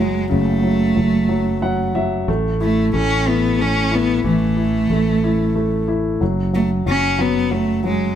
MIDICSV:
0, 0, Header, 1, 4, 480
1, 0, Start_track
1, 0, Key_signature, 3, "major"
1, 0, Tempo, 654308
1, 231, Time_signature, 6, 3, 24, 8
1, 5980, End_track
2, 0, Start_track
2, 0, Title_t, "Cello"
2, 0, Program_c, 0, 42
2, 7, Note_on_c, 0, 56, 65
2, 235, Note_off_c, 0, 56, 0
2, 239, Note_on_c, 0, 57, 74
2, 1407, Note_off_c, 0, 57, 0
2, 1919, Note_on_c, 0, 57, 70
2, 2139, Note_off_c, 0, 57, 0
2, 2166, Note_on_c, 0, 61, 81
2, 2403, Note_on_c, 0, 59, 74
2, 2414, Note_off_c, 0, 61, 0
2, 2649, Note_on_c, 0, 61, 75
2, 2660, Note_off_c, 0, 59, 0
2, 2893, Note_on_c, 0, 59, 75
2, 2904, Note_off_c, 0, 61, 0
2, 3123, Note_off_c, 0, 59, 0
2, 3136, Note_on_c, 0, 57, 74
2, 4295, Note_off_c, 0, 57, 0
2, 4805, Note_on_c, 0, 57, 70
2, 4910, Note_off_c, 0, 57, 0
2, 5050, Note_on_c, 0, 61, 80
2, 5290, Note_on_c, 0, 59, 74
2, 5302, Note_off_c, 0, 61, 0
2, 5525, Note_on_c, 0, 57, 67
2, 5536, Note_off_c, 0, 59, 0
2, 5759, Note_off_c, 0, 57, 0
2, 5768, Note_on_c, 0, 56, 67
2, 5980, Note_off_c, 0, 56, 0
2, 5980, End_track
3, 0, Start_track
3, 0, Title_t, "Grand piano"
3, 0, Program_c, 1, 0
3, 0, Control_c, 1, 64, 127
3, 0, Note_on_c, 1, 54, 48
3, 217, Note_on_c, 1, 49, 52
3, 451, Note_off_c, 1, 54, 0
3, 462, Note_on_c, 1, 54, 41
3, 692, Note_off_c, 1, 54, 0
3, 703, Note_on_c, 1, 54, 44
3, 932, Note_off_c, 1, 54, 0
3, 943, Note_on_c, 1, 54, 50
3, 1178, Note_off_c, 1, 54, 0
3, 1189, Note_on_c, 1, 54, 48
3, 1190, Note_on_c, 1, 78, 54
3, 1415, Note_off_c, 1, 78, 0
3, 1421, Note_off_c, 1, 54, 0
3, 1431, Note_on_c, 1, 76, 62
3, 1432, Note_on_c, 1, 54, 51
3, 1636, Note_off_c, 1, 49, 0
3, 1655, Note_off_c, 1, 76, 0
3, 1665, Note_off_c, 1, 54, 0
3, 1673, Note_on_c, 1, 57, 55
3, 1682, Control_c, 1, 64, 0
3, 1799, Control_c, 1, 64, 127
3, 1913, Note_on_c, 1, 64, 43
3, 2140, Note_off_c, 1, 57, 0
3, 2151, Note_on_c, 1, 57, 47
3, 2382, Note_off_c, 1, 64, 0
3, 2393, Note_on_c, 1, 64, 46
3, 2621, Note_off_c, 1, 57, 0
3, 2632, Note_on_c, 1, 57, 45
3, 2860, Note_off_c, 1, 64, 0
3, 2871, Note_on_c, 1, 64, 48
3, 3113, Note_on_c, 1, 52, 52
3, 3339, Note_off_c, 1, 64, 0
3, 3350, Note_on_c, 1, 64, 40
3, 3564, Note_off_c, 1, 57, 0
3, 3597, Note_on_c, 1, 57, 44
3, 3830, Note_off_c, 1, 64, 0
3, 3841, Note_on_c, 1, 64, 46
3, 4062, Note_off_c, 1, 57, 0
3, 4073, Note_on_c, 1, 57, 42
3, 4303, Note_off_c, 1, 64, 0
3, 4314, Note_on_c, 1, 64, 46
3, 4524, Note_off_c, 1, 52, 0
3, 4539, Note_off_c, 1, 57, 0
3, 4546, Note_off_c, 1, 64, 0
3, 4555, Note_on_c, 1, 54, 47
3, 4563, Control_c, 1, 64, 0
3, 4675, Control_c, 1, 64, 127
3, 4782, Note_off_c, 1, 54, 0
3, 4793, Note_on_c, 1, 54, 42
3, 5022, Note_off_c, 1, 54, 0
3, 5033, Note_on_c, 1, 54, 44
3, 5260, Note_off_c, 1, 54, 0
3, 5271, Note_on_c, 1, 54, 47
3, 5498, Note_off_c, 1, 54, 0
3, 5509, Note_on_c, 1, 54, 45
3, 5738, Note_off_c, 1, 54, 0
3, 5749, Note_on_c, 1, 54, 48
3, 5980, Note_off_c, 1, 54, 0
3, 5980, End_track
4, 0, Start_track
4, 0, Title_t, "Fretless electric bass"
4, 0, Program_c, 2, 35
4, 0, Note_on_c, 2, 30, 72
4, 203, Note_off_c, 2, 30, 0
4, 235, Note_on_c, 2, 30, 79
4, 685, Note_off_c, 2, 30, 0
4, 713, Note_on_c, 2, 30, 72
4, 1644, Note_off_c, 2, 30, 0
4, 1674, Note_on_c, 2, 33, 87
4, 2125, Note_off_c, 2, 33, 0
4, 2155, Note_on_c, 2, 33, 76
4, 3085, Note_off_c, 2, 33, 0
4, 3113, Note_on_c, 2, 33, 71
4, 3564, Note_off_c, 2, 33, 0
4, 3594, Note_on_c, 2, 33, 63
4, 4524, Note_off_c, 2, 33, 0
4, 4557, Note_on_c, 2, 30, 74
4, 5007, Note_off_c, 2, 30, 0
4, 5034, Note_on_c, 2, 30, 69
4, 5964, Note_off_c, 2, 30, 0
4, 5980, End_track
0, 0, End_of_file